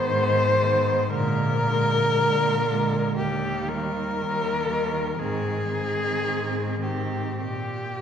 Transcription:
Already playing: D#3 B3 C5
0.10 G#2
0.61 D#3 B3
1.10 A#2 D3 G#3 A#4
1.62 D3 G#3
2.14 A#2
2.65 D3 G#3
3.18 D#2 G4
3.68 D#3 G3 A#4
4.20 D#2
4.68 D#3 G3
5.19 G#2 D#3 C4 G#4
5.70 D#3 C4
6.27 G#2
6.81 D#3 C4 G4
7.41 A#2 G4

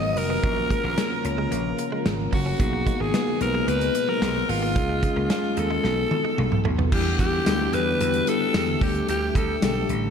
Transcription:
Already playing: G#1 D#3 F#3 B3 D#4 F#4 A#4 D#5
0.03 muted clean electric guitar stroke
0.17 F1 A#4, open hi-hat
0.30 B3
0.43 A#1 C#3 F3 A#3 C#4 F4 A#4, kick, closed hi-hat
0.57 muted clean electric guitar stroke
0.70 G#3 A#3 C#4 F4 A#4, kick, closed hi-hat
0.84 A#1 A#3
0.98 C#4, snare, closed hi-hat
1.24 C#2 A#3 C#4 F4 A#4 C#5, muted clean electric guitar stroke, closed hi-hat
1.38 G#3
1.52 A#1 A#3, closed hi-hat
1.78 muted clean electric guitar stroke, closed hi-hat
1.92 G#3
2.06 G#1, muted clean electric guitar stroke, snare, closed hi-hat
2.33 F#1 A#3 F#4, kick, open hi-hat
2.46 C#4
2.59 B1 B2 G#3 A#3 B3 D#4 G#4, kick, closed hi-hat
2.73 muted clean electric guitar stroke
2.86 G#3 A#3 B3 D#4 F#4, kick, closed hi-hat
3.00 G#1 A#3 G#4
3.14 B3, snare, closed hi-hat
3.40 B1 G#3 B3 D#4 A#4 B4, muted clean electric guitar stroke, closed hi-hat
3.55 G#3
3.68 C#2 A#3 B4, closed hi-hat
3.81 closed hi-hat
3.95 muted clean electric guitar stroke, closed hi-hat
4.09 F#3 A#4
4.22 B1 G#3, snare, closed hi-hat
4.35 muted clean electric guitar stroke
4.49 G#1 F4, open hi-hat
4.63 A#3
4.75 C#2 G#3 C#4 F4 G#4, kick, closed hi-hat
4.89 muted clean electric guitar stroke
5.02 G#3 C#4 F4 G#4, kick, closed hi-hat
5.16 C#2 A#3
5.30 C#4 F4, snare, closed hi-hat
5.56 D#2 G#3 C#4 F4 G#4 A4, muted clean electric guitar stroke, closed hi-hat
5.71 G#3
5.83 B1 A3 B3 D#4 F#4 A4, snare
6.11 muted clean electric guitar stroke, high tom
6.25 G#3
6.38 B1, muted clean electric guitar stroke, mid tom
6.52 mid tom
6.65 B1 A3, floor tom
6.79 B3, floor tom
6.92 E2 D3 G3 B3 D4 E4 G4, kick, crash
7.19 E2 G4, kick, closed hi-hat
7.46 D2 G3 B3 D4 E4 F#4, snare, closed hi-hat, tambourine
7.53 G4
7.73 E2 B4, closed hi-hat
8.01 E2, closed hi-hat
8.14 closed hi-hat
8.27 G3 B3 D4 E4 G4 A4, closed hi-hat
8.54 E2, snare, closed hi-hat, tambourine
8.81 D2 D3 G3 A3 D4 G4 A4, kick, open hi-hat
8.95 closed hi-hat
9.08 D2 G4, closed hi-hat
9.35 D2 A4, kick, closed hi-hat
9.62 B1 G3 A3 D4 G4 A4, snare, closed hi-hat, tambourine
9.89 A1, closed hi-hat

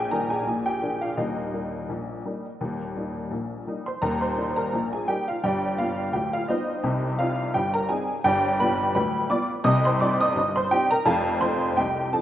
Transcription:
Already playing: A#1 A#2 G#4 G#5
0.11 D#3 G3 D#4 A#4 A#5
0.30 G#4 G#5
0.47 A#1 A#2
0.66 G4 G5
0.82 F3 A#3 D4
1.01 F4 F5
1.17 D#1 D#2 D#4 D#5
1.53 G3 A#3 D#4
1.89 A#1 A#2
2.25 G3 A#3 D#4
2.61 D#1 D#2
2.96 G3 A#3 D#4
3.31 A#1 A#2
3.67 G3 A#3 D#4
3.86 C5 C6
4.02 D#1 D#2 A#4 A#5
4.21 C5 C6
4.37 G3 A#3 D#4
4.56 A#4 A#5
4.73 A#1 A#2
4.93 G#4 G#5
5.08 G3 A#3 D#4 G4 G5
5.28 F4 F5
5.44 G1 G2 G4 D5 G5
5.78 G3 B3 F4 F5
6.13 D1 D2 G4 G5
6.33 F4 F5
6.48 G3 B3 D#4 F4 C5 D#5
6.84 C2 C3
7.19 G3 C4 D#4 F4 F5
7.54 G1 G2 G4 G5
7.74 A#4 A#5
7.89 G3 C4 D#4 G#4 G#5
8.24 G1 G2 G4 D5 G5
8.60 G3 B3 F4 B4 B5
8.95 D1 D2 B4 G5 B5
9.30 G3 B3 F4 D5 D6
9.64 C2 C3 D#5 D#6
9.85 C5 C6
10.01 G3 C4 D#4 D5 D6
10.20 D#5 D#6
10.36 G1 G2
10.56 C5 C6
10.71 G3 C4 D#4 G4 G5
10.91 A#4 A#5
11.05 F1 F2 A4 F5 A5
11.41 F3 C4 D#4 C5 C6
11.77 C2 C3 G4 D#5 G5
12.13 F3 C4 D#4 A4 A5

